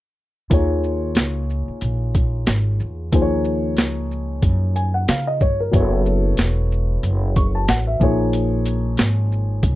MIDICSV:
0, 0, Header, 1, 5, 480
1, 0, Start_track
1, 0, Tempo, 652174
1, 375, Time_signature, 4, 2, 24, 8
1, 7180, End_track
2, 0, Start_track
2, 0, Title_t, "Grand piano"
2, 0, Program_c, 0, 0
2, 367, Note_on_c, 0, 65, 61
2, 374, Note_on_c, 0, 58, 56
2, 382, Note_on_c, 0, 63, 54
2, 389, Note_on_c, 0, 68, 57
2, 394, Note_on_c, 0, 73, 69
2, 2262, Note_off_c, 0, 65, 0
2, 2265, Note_off_c, 0, 58, 0
2, 2269, Note_off_c, 0, 63, 0
2, 2272, Note_off_c, 0, 68, 0
2, 2275, Note_off_c, 0, 73, 0
2, 2297, Note_on_c, 0, 53, 64
2, 2303, Note_on_c, 0, 58, 61
2, 2308, Note_on_c, 0, 63, 57
2, 2315, Note_on_c, 0, 68, 59
2, 2321, Note_on_c, 0, 72, 57
2, 2363, Note_off_c, 0, 72, 0
2, 2369, Note_on_c, 0, 73, 69
2, 3501, Note_on_c, 0, 80, 54
2, 3509, Note_off_c, 0, 73, 0
2, 3628, Note_off_c, 0, 80, 0
2, 3637, Note_on_c, 0, 78, 61
2, 3732, Note_off_c, 0, 78, 0
2, 3743, Note_on_c, 0, 77, 68
2, 3869, Note_off_c, 0, 77, 0
2, 3882, Note_on_c, 0, 75, 67
2, 3975, Note_off_c, 0, 75, 0
2, 3987, Note_on_c, 0, 73, 63
2, 4112, Note_off_c, 0, 73, 0
2, 4124, Note_on_c, 0, 70, 53
2, 4186, Note_off_c, 0, 53, 0
2, 4189, Note_off_c, 0, 58, 0
2, 4192, Note_off_c, 0, 63, 0
2, 4195, Note_off_c, 0, 68, 0
2, 4205, Note_on_c, 0, 54, 66
2, 4212, Note_on_c, 0, 59, 62
2, 4219, Note_on_c, 0, 64, 59
2, 4227, Note_on_c, 0, 68, 48
2, 4231, Note_on_c, 0, 73, 70
2, 4273, Note_on_c, 0, 69, 60
2, 4276, Note_off_c, 0, 68, 0
2, 4347, Note_off_c, 0, 70, 0
2, 5419, Note_on_c, 0, 85, 54
2, 5547, Note_off_c, 0, 85, 0
2, 5556, Note_on_c, 0, 81, 62
2, 5652, Note_off_c, 0, 81, 0
2, 5660, Note_on_c, 0, 78, 66
2, 5788, Note_off_c, 0, 78, 0
2, 5795, Note_on_c, 0, 76, 60
2, 5860, Note_off_c, 0, 54, 0
2, 5864, Note_off_c, 0, 59, 0
2, 5867, Note_off_c, 0, 64, 0
2, 5873, Note_off_c, 0, 73, 0
2, 5885, Note_on_c, 0, 53, 69
2, 5892, Note_on_c, 0, 58, 64
2, 5894, Note_off_c, 0, 69, 0
2, 5900, Note_on_c, 0, 63, 62
2, 5908, Note_on_c, 0, 68, 63
2, 5913, Note_on_c, 0, 73, 69
2, 6021, Note_off_c, 0, 76, 0
2, 7180, Note_off_c, 0, 53, 0
2, 7180, Note_off_c, 0, 58, 0
2, 7180, Note_off_c, 0, 63, 0
2, 7180, Note_off_c, 0, 68, 0
2, 7180, Note_off_c, 0, 73, 0
2, 7180, End_track
3, 0, Start_track
3, 0, Title_t, "Upright bass"
3, 0, Program_c, 1, 32
3, 374, Note_on_c, 1, 39, 95
3, 830, Note_off_c, 1, 39, 0
3, 852, Note_on_c, 1, 37, 75
3, 1212, Note_off_c, 1, 37, 0
3, 1339, Note_on_c, 1, 34, 78
3, 1793, Note_off_c, 1, 34, 0
3, 1822, Note_on_c, 1, 32, 81
3, 2047, Note_off_c, 1, 32, 0
3, 2060, Note_on_c, 1, 40, 71
3, 2285, Note_off_c, 1, 40, 0
3, 2300, Note_on_c, 1, 39, 89
3, 2786, Note_off_c, 1, 39, 0
3, 2786, Note_on_c, 1, 37, 75
3, 3237, Note_off_c, 1, 37, 0
3, 3257, Note_on_c, 1, 42, 85
3, 3712, Note_off_c, 1, 42, 0
3, 3740, Note_on_c, 1, 49, 83
3, 3965, Note_off_c, 1, 49, 0
3, 3982, Note_on_c, 1, 31, 72
3, 4207, Note_off_c, 1, 31, 0
3, 4219, Note_on_c, 1, 30, 99
3, 4673, Note_off_c, 1, 30, 0
3, 4697, Note_on_c, 1, 28, 81
3, 5152, Note_off_c, 1, 28, 0
3, 5175, Note_on_c, 1, 30, 87
3, 5631, Note_off_c, 1, 30, 0
3, 5655, Note_on_c, 1, 33, 82
3, 5883, Note_off_c, 1, 33, 0
3, 5894, Note_on_c, 1, 34, 84
3, 6585, Note_off_c, 1, 34, 0
3, 6612, Note_on_c, 1, 32, 84
3, 7069, Note_off_c, 1, 32, 0
3, 7088, Note_on_c, 1, 36, 83
3, 7180, Note_off_c, 1, 36, 0
3, 7180, End_track
4, 0, Start_track
4, 0, Title_t, "Muted upright bass strokes"
4, 1236, Note_on_c, 9, 29, 41
4, 1310, Note_off_c, 9, 29, 0
4, 7180, End_track
5, 0, Start_track
5, 0, Title_t, "Drums"
5, 373, Note_on_c, 9, 36, 101
5, 375, Note_on_c, 9, 42, 81
5, 447, Note_off_c, 9, 36, 0
5, 448, Note_off_c, 9, 42, 0
5, 616, Note_on_c, 9, 82, 55
5, 690, Note_off_c, 9, 82, 0
5, 846, Note_on_c, 9, 42, 66
5, 859, Note_on_c, 9, 38, 106
5, 920, Note_off_c, 9, 42, 0
5, 933, Note_off_c, 9, 38, 0
5, 1103, Note_on_c, 9, 82, 45
5, 1177, Note_off_c, 9, 82, 0
5, 1333, Note_on_c, 9, 42, 64
5, 1407, Note_off_c, 9, 42, 0
5, 1580, Note_on_c, 9, 42, 43
5, 1580, Note_on_c, 9, 82, 44
5, 1581, Note_on_c, 9, 36, 78
5, 1653, Note_off_c, 9, 42, 0
5, 1653, Note_off_c, 9, 82, 0
5, 1654, Note_off_c, 9, 36, 0
5, 1814, Note_on_c, 9, 42, 66
5, 1818, Note_on_c, 9, 38, 86
5, 1888, Note_off_c, 9, 42, 0
5, 1892, Note_off_c, 9, 38, 0
5, 2060, Note_on_c, 9, 82, 45
5, 2134, Note_off_c, 9, 82, 0
5, 2299, Note_on_c, 9, 36, 100
5, 2301, Note_on_c, 9, 42, 79
5, 2373, Note_off_c, 9, 36, 0
5, 2374, Note_off_c, 9, 42, 0
5, 2535, Note_on_c, 9, 82, 51
5, 2609, Note_off_c, 9, 82, 0
5, 2772, Note_on_c, 9, 42, 61
5, 2784, Note_on_c, 9, 38, 99
5, 2846, Note_off_c, 9, 42, 0
5, 2858, Note_off_c, 9, 38, 0
5, 3027, Note_on_c, 9, 82, 45
5, 3100, Note_off_c, 9, 82, 0
5, 3256, Note_on_c, 9, 36, 72
5, 3256, Note_on_c, 9, 42, 65
5, 3329, Note_off_c, 9, 36, 0
5, 3330, Note_off_c, 9, 42, 0
5, 3502, Note_on_c, 9, 42, 42
5, 3502, Note_on_c, 9, 82, 44
5, 3576, Note_off_c, 9, 42, 0
5, 3576, Note_off_c, 9, 82, 0
5, 3740, Note_on_c, 9, 42, 71
5, 3744, Note_on_c, 9, 38, 88
5, 3814, Note_off_c, 9, 42, 0
5, 3818, Note_off_c, 9, 38, 0
5, 3979, Note_on_c, 9, 82, 48
5, 3980, Note_on_c, 9, 36, 75
5, 4052, Note_off_c, 9, 82, 0
5, 4054, Note_off_c, 9, 36, 0
5, 4219, Note_on_c, 9, 36, 99
5, 4221, Note_on_c, 9, 42, 81
5, 4292, Note_off_c, 9, 36, 0
5, 4295, Note_off_c, 9, 42, 0
5, 4459, Note_on_c, 9, 82, 57
5, 4533, Note_off_c, 9, 82, 0
5, 4690, Note_on_c, 9, 42, 70
5, 4702, Note_on_c, 9, 38, 100
5, 4763, Note_off_c, 9, 42, 0
5, 4776, Note_off_c, 9, 38, 0
5, 4944, Note_on_c, 9, 82, 47
5, 5018, Note_off_c, 9, 82, 0
5, 5176, Note_on_c, 9, 42, 69
5, 5250, Note_off_c, 9, 42, 0
5, 5417, Note_on_c, 9, 42, 43
5, 5417, Note_on_c, 9, 82, 44
5, 5420, Note_on_c, 9, 36, 79
5, 5491, Note_off_c, 9, 42, 0
5, 5491, Note_off_c, 9, 82, 0
5, 5493, Note_off_c, 9, 36, 0
5, 5653, Note_on_c, 9, 42, 65
5, 5657, Note_on_c, 9, 38, 95
5, 5727, Note_off_c, 9, 42, 0
5, 5730, Note_off_c, 9, 38, 0
5, 5894, Note_on_c, 9, 36, 89
5, 5895, Note_on_c, 9, 82, 45
5, 5968, Note_off_c, 9, 36, 0
5, 5969, Note_off_c, 9, 82, 0
5, 6132, Note_on_c, 9, 42, 78
5, 6206, Note_off_c, 9, 42, 0
5, 6370, Note_on_c, 9, 42, 53
5, 6370, Note_on_c, 9, 82, 58
5, 6444, Note_off_c, 9, 42, 0
5, 6444, Note_off_c, 9, 82, 0
5, 6604, Note_on_c, 9, 42, 66
5, 6617, Note_on_c, 9, 38, 105
5, 6678, Note_off_c, 9, 42, 0
5, 6690, Note_off_c, 9, 38, 0
5, 6859, Note_on_c, 9, 82, 46
5, 6933, Note_off_c, 9, 82, 0
5, 7087, Note_on_c, 9, 36, 82
5, 7087, Note_on_c, 9, 42, 65
5, 7161, Note_off_c, 9, 36, 0
5, 7161, Note_off_c, 9, 42, 0
5, 7180, End_track
0, 0, End_of_file